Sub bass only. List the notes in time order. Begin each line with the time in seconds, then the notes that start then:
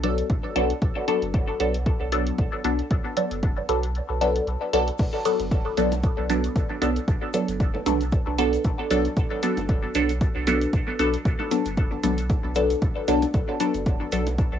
Already playing: B1
0.30 B1
0.56 B1
0.82 B1
1.22 F#1
1.60 B1
2.01 B1
2.38 B1
2.64 B1
2.91 B1
3.31 F#1
3.69 B1
4.09 B1
4.47 B1
4.73 B1
4.99 B1
5.40 F#1
5.78 B1
6.18 B1
6.56 B1
6.82 B1
7.08 B1
7.48 F#1
7.86 B1
8.27 B1
8.65 B1
8.90 B1
9.17 B1
9.57 F#1
9.95 B1
10.35 B1
10.73 B1
10.99 B1
11.25 B1
11.66 F#1
12.04 B1
12.44 B1
12.82 B1
13.08 B1
13.34 B1
13.74 F#1
14.12 B1
14.53 B1